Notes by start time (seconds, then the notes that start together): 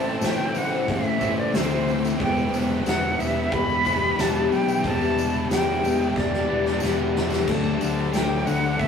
Already playing: A1 A2 E3 A3 C4 E4 A4 C5 E5 A5 D6
0.21 A2 E3, snare, open hi-hat, tambourine
0.26 A3 G5
0.53 A1 E3 A3 C4 E4, open hi-hat, tambourine
0.58 A2 F#5
0.88 A1 E4 E5, kick, open hi-hat, tambourine
1.04 tambourine
1.19 A1 A2 E3 A3 C4 E4, kick, open hi-hat, tambourine
1.24 E3
1.39 D5
1.53 D2 A2 E3 A3 C4 E4 C5, snare, open hi-hat, tambourine
1.72 tambourine
1.87 C4, open hi-hat, tambourine
2.05 snare, tambourine
2.18 E1 E2 B2 E3 G3 B3 G4 D5 B5, kick, open hi-hat
2.22 E3 E4 G5
2.38 tambourine
2.52 E1 B2 E3 D4, open hi-hat, tambourine
2.86 E1 E2 B2 B3 F#5, snare, open hi-hat, tambourine
2.90 E3
3.18 E1 E3 G3 B3 E4 E5, open hi-hat, tambourine
3.23 B2
3.51 E1 G4 B5, kick, open hi-hat, tambourine
3.70 tambourine
3.83 E3 G3 B3 D4 E4, kick, open hi-hat, tambourine
3.88 B2
4.17 E1 E2 B2 E3 G3 B3 E4 G4 A5, snare, open hi-hat, tambourine
4.36 tambourine
4.50 B1 D4 G5, open hi-hat, tambourine
4.68 tambourine
4.82 E1 E2 E3 G3 B3 E4 A5, kick, open hi-hat, tambourine
4.86 B2 E3 A5
5.02 tambourine
5.16 B2 E3 D4, open hi-hat, tambourine
5.50 E2 B2 E3 B3 G5, snare, open hi-hat, tambourine
5.82 E1 B2 E3 G3 B3 E4, open hi-hat, tambourine
6.02 tambourine
6.16 E1 G4 D5, kick, snare, tambourine
6.34 snare
6.48 E1 B2 E3 G3 B3 D4 E4
6.66 snare, tambourine
6.80 E1 E2 B2 E3 G3 B3 E4 G4, snare, tambourine
6.98 tambourine
7.16 D4, snare
7.30 snare, tambourine
7.46 D2 D3 F#3 A3 D4 A4 A5 D6, kick, crash
7.65 tambourine
7.80 D2 A3 D4, open hi-hat, tambourine
8.13 D2 D3 A3 D4 G5, snare, open hi-hat, tambourine
8.45 D2 D3 F#3 A3 D4 F#5, open hi-hat, tambourine
8.50 A3
8.79 D2 F#4 E5, kick, open hi-hat, tambourine